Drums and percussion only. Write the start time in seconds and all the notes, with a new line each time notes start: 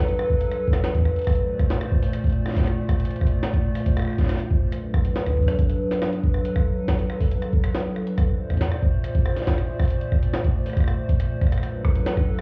0.01 closed hi-hat
0.08 closed hi-hat
0.19 cross-stick
0.30 kick
0.41 closed hi-hat
0.52 cross-stick, closed hi-hat
0.68 kick
0.73 cross-stick, snare, closed hi-hat
0.84 snare, closed hi-hat
0.95 kick, closed hi-hat
0.98 kick
1.02 kick, cross-stick
1.16 closed hi-hat
1.19 closed hi-hat
1.22 closed hi-hat
1.24 kick, cross-stick, closed hi-hat
1.27 closed hi-hat
1.30 closed hi-hat
1.32 closed hi-hat
1.35 closed hi-hat
1.59 kick, cross-stick, closed hi-hat
1.70 snare, closed hi-hat
1.81 cross-stick, closed hi-hat
1.92 kick
2.03 open hi-hat
2.13 cross-stick, closed hi-hat
2.24 kick, closed hi-hat
2.27 closed hi-hat
2.30 closed hi-hat
2.32 closed hi-hat
2.46 cross-stick, snare
2.48 snare
2.51 snare
2.54 kick, snare
2.57 snare, closed hi-hat, open hi-hat
2.59 snare
2.62 snare
2.65 cross-stick, snare, closed hi-hat
2.89 kick, cross-stick, closed hi-hat
3.00 closed hi-hat
3.05 closed hi-hat
3.11 closed hi-hat
3.16 closed hi-hat
3.21 kick, cross-stick
3.27 closed hi-hat
3.43 cross-stick, snare, closed hi-hat
3.54 kick, closed hi-hat
3.75 cross-stick, open hi-hat
3.86 kick, closed hi-hat
3.97 cross-stick, closed hi-hat
4.00 cross-stick
4.02 cross-stick
4.05 cross-stick
4.08 cross-stick
4.10 cross-stick
4.13 cross-stick
4.16 kick, cross-stick, snare, closed hi-hat
4.21 snare
4.24 snare
4.26 cross-stick, snare
4.29 snare, closed hi-hat
4.32 snare
4.34 snare
4.37 snare, closed hi-hat
4.51 kick
4.72 cross-stick, closed hi-hat
4.94 kick, cross-stick
5.05 closed hi-hat
5.16 snare, closed hi-hat
5.26 kick, cross-stick, closed hi-hat
5.32 kick
5.37 kick
5.43 kick
5.48 cross-stick, open hi-hat
5.59 kick, closed hi-hat
5.70 closed hi-hat
5.91 snare, open hi-hat
6.02 cross-stick, snare, closed hi-hat
6.13 closed hi-hat
6.24 kick
6.34 cross-stick
6.45 closed hi-hat
6.56 kick, cross-stick
6.88 kick, cross-stick, snare, closed hi-hat
6.99 closed hi-hat
7.10 cross-stick
7.21 kick, open hi-hat
7.31 closed hi-hat
7.42 cross-stick, closed hi-hat
7.53 kick
7.64 cross-stick, closed hi-hat
7.75 snare, closed hi-hat
7.80 closed hi-hat
7.96 cross-stick
8.07 closed hi-hat
8.18 kick, cross-stick, closed hi-hat
8.50 kick, cross-stick, closed hi-hat
8.54 kick, closed hi-hat
8.57 kick, snare, closed hi-hat
8.64 closed hi-hat
8.72 cross-stick
8.82 kick
9.04 cross-stick, closed hi-hat
9.15 kick, closed hi-hat
9.26 cross-stick
9.36 snare, open hi-hat
9.42 snare
9.47 kick, snare, closed hi-hat
9.53 snare
9.58 cross-stick, closed hi-hat
9.80 kick, cross-stick, closed hi-hat
9.82 closed hi-hat
9.85 closed hi-hat
9.88 closed hi-hat
9.90 closed hi-hat
10.01 closed hi-hat
10.12 kick, cross-stick
10.23 closed hi-hat
10.34 cross-stick, snare, closed hi-hat
10.44 kick, closed hi-hat
10.66 cross-stick, open hi-hat
10.73 kick, cross-stick
10.77 cross-stick, closed hi-hat
10.80 cross-stick
10.84 cross-stick
10.88 cross-stick, closed hi-hat
11.09 kick, closed hi-hat
11.20 cross-stick, closed hi-hat
11.41 kick, cross-stick, closed hi-hat
11.47 cross-stick
11.52 cross-stick, closed hi-hat
11.58 cross-stick
11.63 cross-stick, closed hi-hat
11.85 kick, cross-stick
11.95 closed hi-hat
12.06 snare, closed hi-hat
12.17 kick, cross-stick, closed hi-hat